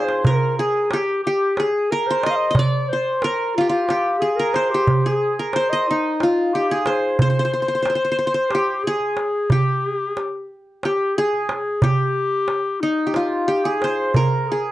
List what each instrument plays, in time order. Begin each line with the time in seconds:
Already playing: qanun C4 D#4 F4 G#4 C5
0.05 clarinet C5, darbuka ka
0.24 clarinet A#4, qanun A#4, darbuka dum
0.58 clarinet G#4, qanun G#4
0.90 clarinet G4, qanun G4, darbuka tek
1.23 clarinet G4, qanun G4
1.56 clarinet G#4, qanun G#4, darbuka tek
1.91 clarinet A#4, qanun A#4
2.06 clarinet C5, darbuka ka
2.10 qanun C5
2.23 clarinet D#5, qanun D#5, darbuka tek
2.30 clarinet F5
2.36 clarinet D#5
2.51 qanun D#5
2.55 clarinet D5, darbuka dum
2.59 qanun D5
2.89 clarinet C5, qanun C5
3.22 clarinet A#4, qanun A#4, darbuka tek
3.56 clarinet F4, qanun F4
3.61 qanun G4
3.69 qanun F4, clarinet F4
3.87 clarinet G4, qanun G4, darbuka tek
4.19 clarinet G#4, qanun G#4
4.36 clarinet A#4, qanun A#4, darbuka ka
4.53 clarinet C5, qanun C5, darbuka tek
4.70 clarinet G4
4.74 qanun G4
4.87 darbuka dum
5.04 clarinet G#4, qanun G#4
5.39 qanun A#4
5.53 clarinet C5, qanun C5, darbuka tek
5.70 clarinet D#5, qanun D#5
5.88 clarinet D#4, qanun D#4
6.20 clarinet F4, qanun F4, darbuka tek
6.54 clarinet G4, qanun G4
6.70 clarinet G#4, qanun G#4, darbuka ka
6.86 qanun C5, clarinet C5, darbuka tek
7.19 clarinet C5, qanun C5, darbuka dum
7.30 qanun C5
7.39 qanun C5
7.45 qanun C5
7.52 qanun C5, darbuka ka
7.62 qanun C5
7.68 qanun C5
7.75 qanun C5
7.82 qanun C5, darbuka tek
7.90 qanun C5
7.95 qanun C5
8.05 qanun C5
8.12 qanun C5
8.19 qanun C5, darbuka ka
8.27 qanun C5
8.34 qanun C5
8.50 clarinet G4, darbuka tek
8.55 qanun G4
8.84 clarinet G#4, qanun G#4, darbuka ka
9.00 darbuka ka
9.17 darbuka tek
9.50 clarinet G4, qanun G4, darbuka dum
10.17 darbuka tek
10.83 clarinet G4, qanun G4, darbuka tek
11.15 clarinet G#4, qanun G#4
11.33 darbuka ka
11.49 darbuka tek
11.82 clarinet G4, qanun G4, darbuka dum
12.48 darbuka tek
12.81 clarinet D#4, qanun D#4
13.07 qanun G4
13.14 clarinet F4, qanun F4, darbuka tek
13.48 qanun G4, clarinet G4
13.64 clarinet G#4, qanun G#4, darbuka ka
13.81 clarinet C5, qanun C5, darbuka tek
14.14 clarinet A#4, qanun A#4, darbuka dum
14.48 clarinet G#4
14.52 qanun G#4